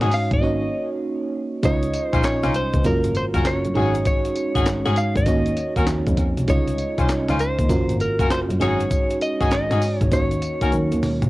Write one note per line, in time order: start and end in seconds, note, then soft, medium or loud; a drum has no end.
0.00 0.09 G#2 loud
0.00 0.39 G#3 medium
0.00 0.39 C#4 medium
0.00 0.12 C#4 medium
0.00 0.39 D#4 medium
0.00 0.12 D#4 medium
0.00 0.39 F#4 medium
0.00 0.12 F#4 medium
0.00 0.12 G#4 medium
0.00 0.40 C#5 medium
0.00 snare medium
0.00 closed hi-hat soft
0.11 0.33 F5 loud
0.11 open hi-hat medium
0.11 tambourine medium
0.31 0.39 G#1 loud
0.31 0.89 D#5 loud
0.31 kick loud
0.31 closed hi-hat medium
0.41 1.60 A#3 medium
0.41 1.61 C#4 medium
0.41 1.61 D#4 medium
0.41 1.61 F#4 medium
0.41 1.62 C#5 medium
1.63 1.86 C#2 loud
1.63 2.82 G#3 medium
1.63 2.82 C#4 medium
1.63 2.82 D#4 medium
1.63 2.83 F4 medium
1.63 2.05 C#5 medium
1.63 2.83 D#5 medium
1.63 kick loud
1.63 closed hi-hat medium
1.63 tambourine medium
1.63 shaker medium
1.83 closed hi-hat medium
1.83 shaker medium
1.93 closed hi-hat medium
1.93 tambourine medium
2.05 2.21 C5 medium
2.13 2.21 A#1 medium
2.13 2.24 C#4 medium
2.13 2.24 D#4 medium
2.13 2.24 F4 medium
2.13 2.24 C5 medium
2.13 kick loud
2.13 closed hi-hat medium
2.13 shaker soft
2.23 2.55 C#5 medium
2.23 snare loud
2.23 clap medium
2.23 closed hi-hat medium
2.23 tambourine loud
2.23 shaker medium
2.43 2.51 C2 medium
2.43 2.54 C#4 medium
2.43 2.55 D#4 medium
2.43 2.55 F4 medium
2.43 2.55 C5 medium
2.43 snare medium
2.43 closed hi-hat soft
2.43 shaker soft
2.54 2.86 C5 medium
2.54 closed hi-hat medium
2.54 tambourine medium
2.54 shaker medium
2.73 2.82 C#2 medium
2.73 kick loud
2.73 closed hi-hat medium
2.73 shaker medium
2.84 2.99 F#1 loud
2.84 3.75 A#3 medium
2.84 3.74 C#4 medium
2.84 3.76 F4 medium
2.84 3.75 F#4 medium
2.84 3.76 A#4 medium
2.84 3.17 A#4 medium
2.84 kick medium
2.84 closed hi-hat medium
2.84 tambourine medium
2.84 shaker medium
3.04 3.12 G#1 loud
3.04 closed hi-hat medium
3.04 shaker medium
3.15 3.25 C5 medium
3.15 closed hi-hat medium
3.15 tambourine medium
3.34 3.42 F#1 loud
3.34 3.45 C#4 medium
3.34 3.45 F4 medium
3.34 3.46 F#4 medium
3.34 3.46 A#4 medium
3.34 kick loud
3.34 closed hi-hat medium
3.34 shaker medium
3.45 4.06 C#5 loud
3.45 snare loud
3.45 clap medium
3.45 closed hi-hat medium
3.45 tambourine medium
3.45 shaker medium
3.65 3.73 F#2 medium
3.65 closed hi-hat medium
3.65 shaker medium
3.74 4.20 G#1 loud
3.74 5.23 G#3 medium
3.74 5.24 C#4 medium
3.74 3.95 C#4 medium
3.74 3.95 D#4 medium
3.74 5.24 D#4 medium
3.74 3.95 F#4 medium
3.74 5.24 F#4 medium
3.74 3.95 G#4 medium
3.74 5.24 C#5 medium
3.74 closed hi-hat medium
3.74 shaker soft
3.95 closed hi-hat medium
3.95 shaker medium
4.05 4.97 C#5 loud
4.05 kick loud
4.05 closed hi-hat medium
4.05 tambourine medium
4.05 shaker medium
4.25 closed hi-hat medium
4.25 shaker medium
4.36 closed hi-hat medium
4.36 tambourine medium
4.55 4.63 G#1 medium
4.55 4.66 C#4 medium
4.55 4.67 D#4 medium
4.55 4.67 F#4 medium
4.55 4.67 G#4 medium
4.55 kick medium
4.55 closed hi-hat medium
4.55 shaker medium
4.66 4.81 G#2 soft
4.66 snare loud
4.66 clap medium
4.66 closed hi-hat medium
4.66 tambourine loud
4.66 shaker medium
4.85 4.94 G#2 loud
4.85 4.97 C#4 medium
4.85 4.97 D#4 medium
4.85 4.97 F#4 medium
4.85 4.97 G#4 medium
4.85 snare medium
4.85 closed hi-hat soft
4.85 shaker soft
4.96 5.17 F5 loud
4.96 closed hi-hat medium
4.96 tambourine medium
4.96 shaker medium
5.16 5.24 G#1 loud
5.16 5.73 D#5 loud
5.16 kick medium
5.16 closed hi-hat medium
5.16 shaker medium
5.26 5.49 D#2 medium
5.26 6.45 A#3 medium
5.26 6.46 C#4 medium
5.26 6.46 D#4 medium
5.26 6.46 F#4 medium
5.26 6.46 C#5 medium
5.26 kick loud
5.26 closed hi-hat medium
5.26 tambourine medium
5.26 shaker medium
5.46 closed hi-hat medium
5.46 shaker medium
5.57 closed hi-hat medium
5.57 tambourine medium
5.76 5.85 D#2 loud
5.76 5.88 C#4 medium
5.76 5.88 D#4 medium
5.76 5.88 F#4 medium
5.76 5.88 A#4 medium
5.76 kick medium
5.76 closed hi-hat medium
5.76 shaker medium
5.87 6.02 F2 soft
5.87 snare loud
5.87 clap medium
5.87 closed hi-hat medium
5.87 tambourine loud
5.87 shaker medium
6.07 6.15 F2 medium
6.07 kick medium
6.07 closed hi-hat medium
6.07 shaker medium
6.17 kick loud
6.17 closed hi-hat medium
6.17 shaker soft
6.37 6.45 C2 loud
6.37 closed hi-hat medium
6.37 shaker medium
6.47 6.71 C#2 loud
6.47 7.67 G#3 medium
6.47 7.67 C#4 medium
6.47 7.67 D#4 medium
6.47 7.67 F4 medium
6.47 7.36 C#5 loud
6.47 7.68 D#5 medium
6.47 kick loud
6.47 closed hi-hat medium
6.47 tambourine medium
6.47 shaker medium
6.67 closed hi-hat medium
6.67 shaker medium
6.78 closed hi-hat medium
6.78 tambourine medium
6.98 7.06 C2 medium
6.98 7.09 C#4 medium
6.98 7.09 D#4 medium
6.98 7.09 F4 medium
6.98 7.09 C5 medium
6.98 kick loud
6.98 closed hi-hat medium
6.98 shaker medium
7.08 snare loud
7.08 clap medium
7.08 closed hi-hat medium
7.08 tambourine loud
7.08 shaker medium
7.28 7.36 C#2 medium
7.28 7.39 C#4 medium
7.28 7.40 D#4 medium
7.28 7.40 F4 medium
7.28 7.40 C5 medium
7.28 snare medium
7.28 closed hi-hat soft
7.28 shaker medium
7.39 7.96 C5 medium
7.39 closed hi-hat medium
7.39 tambourine medium
7.39 shaker medium
7.59 7.67 D#2 medium
7.59 kick loud
7.59 closed hi-hat medium
7.59 shaker medium
7.69 7.84 F#1 loud
7.69 8.60 A#3 medium
7.69 8.59 C#4 medium
7.69 8.60 F4 medium
7.69 8.60 F#4 medium
7.69 8.61 A#4 medium
7.69 kick medium
7.69 closed hi-hat medium
7.69 tambourine medium
7.69 shaker medium
7.89 7.97 G#1 medium
7.89 closed hi-hat medium
7.89 shaker medium
8.00 8.29 A#4 medium
8.00 closed hi-hat medium
8.00 tambourine medium
8.19 8.27 F#1 medium
8.19 8.30 C#4 medium
8.19 8.30 F4 medium
8.19 8.30 F#4 medium
8.19 8.31 A#4 medium
8.19 kick loud
8.19 closed hi-hat medium
8.19 shaker medium
8.30 8.39 C5 loud
8.30 snare loud
8.30 clap medium
8.30 closed hi-hat medium
8.30 tambourine medium
8.30 shaker medium
8.49 8.57 F#2 loud
8.49 closed hi-hat medium
8.49 shaker medium
8.59 9.05 G#1 medium
8.59 10.08 G#3 medium
8.59 8.80 C#4 medium
8.59 10.09 C#4 medium
8.59 8.80 D#4 medium
8.59 10.09 D#4 medium
8.59 8.80 F#4 medium
8.59 10.09 F#4 medium
8.59 8.80 G#4 loud
8.59 10.10 C#5 medium
8.59 9.18 C#5 loud
8.59 closed hi-hat medium
8.59 shaker medium
8.80 closed hi-hat medium
8.80 shaker medium
8.91 kick loud
8.91 closed hi-hat medium
8.91 tambourine medium
8.91 shaker medium
9.10 closed hi-hat medium
9.10 shaker medium
9.21 9.51 D#5 loud
9.21 closed hi-hat medium
9.21 tambourine medium
9.40 9.48 G#1 medium
9.40 9.51 C#4 medium
9.40 9.52 D#4 medium
9.40 9.52 F#4 medium
9.40 9.52 G#4 medium
9.40 kick loud
9.40 closed hi-hat soft
9.40 shaker medium
9.51 9.66 G#2 soft
9.51 9.99 D#5 loud
9.51 snare loud
9.51 clap medium
9.51 closed hi-hat medium
9.51 tambourine loud
9.51 shaker medium
9.70 9.78 G#2 loud
9.70 9.82 C#4 medium
9.70 9.82 D#4 medium
9.70 9.82 F#4 medium
9.70 9.82 G#4 medium
9.70 snare medium
9.70 closed hi-hat soft
9.70 shaker medium
9.82 open hi-hat medium
9.82 tambourine medium
9.82 shaker medium
9.99 10.09 G#1 loud
9.99 10.13 C#5 loud
9.99 kick medium
9.99 closed hi-hat medium
9.99 shaker medium
10.11 10.34 D#2 loud
10.11 11.30 A#3 medium
10.11 11.30 C#4 medium
10.11 11.30 D#4 medium
10.11 11.30 F#4 medium
10.11 10.99 C#5 medium
10.11 11.30 C#5 medium
10.11 kick loud
10.11 closed hi-hat medium
10.11 tambourine medium
10.11 shaker medium
10.31 closed hi-hat medium
10.31 shaker medium
10.42 closed hi-hat medium
10.42 tambourine medium
10.61 10.70 D#2 medium
10.61 10.73 C#4 medium
10.61 10.73 D#4 medium
10.61 10.73 F#4 medium
10.61 10.73 A#4 medium
10.61 kick medium
10.61 closed hi-hat medium
10.61 shaker medium
10.72 10.87 D#3 loud
10.72 closed hi-hat medium
10.72 high tom medium
10.72 shaker medium
10.92 11.00 D#2 medium
10.92 closed hi-hat medium
10.92 shaker medium
11.03 mid tom medium
11.03 open hi-hat medium
11.03 shaker soft
11.22 11.30 C2 medium
11.22 closed hi-hat medium
11.22 floor tom loud
11.22 shaker medium